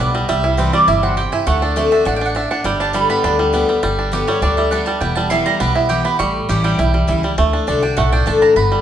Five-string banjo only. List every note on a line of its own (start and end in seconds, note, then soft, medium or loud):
0.00 0.13 G3 medium
0.00 0.29 B3 medium
0.00 0.12 D4 medium
0.15 0.28 G3 medium
0.29 0.71 G3 medium
0.44 0.85 E4 medium
0.58 1.00 C4 medium
0.73 1.15 G3 medium
0.88 1.30 E4 medium
1.03 1.44 C4 medium
1.17 1.47 G4 medium
1.33 1.47 E4 medium
1.47 1.76 A3 medium
1.62 1.92 D4 medium
1.77 2.18 A3 medium
1.92 2.06 D4 medium
2.06 2.21 D4 medium
2.21 2.36 D4 medium
2.36 2.51 D4 medium
2.51 2.80 D4 medium
2.65 2.93 G3 medium
2.80 3.21 D4 medium
2.94 3.36 G3 medium
3.10 3.51 B3 medium
3.24 3.66 D4 medium
3.39 3.68 G3 medium
3.54 3.83 B3 medium
3.69 3.82 G3 medium
3.83 4.28 G3 medium
3.99 4.40 D4 medium
4.13 5.53 G4 medium
4.28 4.58 G3 medium
4.43 4.71 D4 medium
4.58 4.87 G3 medium
4.72 5.02 D4 medium
4.87 5.17 G3 medium
5.01 5.43 B3 medium
5.17 5.45 G3 medium
5.31 5.73 E4 medium
5.46 5.87 G3 medium
5.60 6.02 B3 medium
5.76 6.17 E4 medium
5.90 6.20 G4 medium
6.05 6.20 B3 medium
6.20 6.61 G3 medium
6.49 6.91 G4 medium
6.65 6.93 G3 medium
6.79 7.07 E4 medium
6.94 7.23 G3 medium
7.09 7.38 E4 medium
7.24 7.38 G3 medium
7.38 7.80 A3 medium
7.53 7.67 D4 medium
7.68 7.82 D4 medium
7.83 8.11 D4 medium
7.98 8.39 A3 medium
8.12 8.26 D4 medium
8.27 8.41 D4 medium
8.42 8.56 D4 medium
8.57 8.81 B3 medium
8.72 8.81 G3 medium